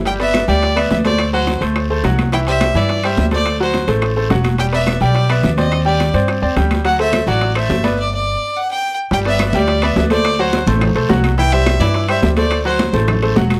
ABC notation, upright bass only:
X:1
M:4/4
L:1/8
Q:1/4=212
K:G
V:1 name="Upright bass" clef=bass
G,,,3 D,,3 D,,2- | D,,3 D,,3 C,,2- | C,,3 G,,3 D,,2- | D,,3 A,,,3 E,,,2- |
E,,,3 B,,,3 _E,,2- | _E,,3 G,,2 E,, D,,2- | D,,3 A,,,3 G,,,2- | G,,,3 z4 z |
G,,,3 D,,3 D,,2- | D,,3 A,,,2 B,,, C,,2- | C,,3 G,,3 D,,2- | D,,3 A,,,3 E,,,2 |]